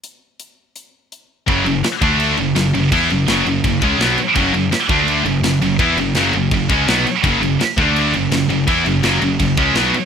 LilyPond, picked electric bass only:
\new Staff \with { instrumentName = "Picked electric bass" } { \clef bass \time 4/4 \tempo 4 = 167 r1 | fis,,8 fis,,8 r8 d,4 fis,,8 fis,,8 fis,,8 | e,8 fis,,8 fis,,8 fis,,8 fis,,8 cis,8 b,,8 r8 | fis,,8 fis,,8 r8 d,4 fis,,8 fis,,8 fis,,8 |
e,8 fis,,8 fis,,8 fis,,8 fis,,8 cis,8 b,,8 r8 | fis,,8 fis,,8 r8 d,4 fis,,8 fis,,8 fis,,8 | e,8 fis,,8 fis,,8 fis,,8 fis,,8 cis,8 b,,8 r8 | }